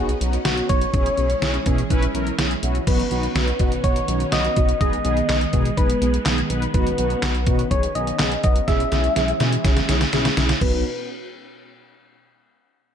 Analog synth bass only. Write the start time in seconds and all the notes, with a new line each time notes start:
Already playing: B1
0.21 B1
0.45 B1
0.70 B1
0.94 B1
1.18 B1
1.42 B1
1.66 B2
1.90 B1
2.14 B1
2.39 B1
2.63 B1
2.87 B1
3.11 B1
3.35 B1
3.60 B2
3.84 B1
4.08 B1
4.32 B1
4.57 B1
4.81 B1
5.05 B1
5.29 B1
5.53 B2
5.77 B1
6.02 B1
6.26 B1
6.50 B1
6.74 B1
6.98 B1
7.23 B1
7.47 B2
7.71 B1
7.95 B1
8.19 B1
8.44 B1
8.68 B1
8.92 B1
9.16 B1
9.40 B2
9.64 B1
9.89 B1
10.13 B1
10.37 B1
10.61 B1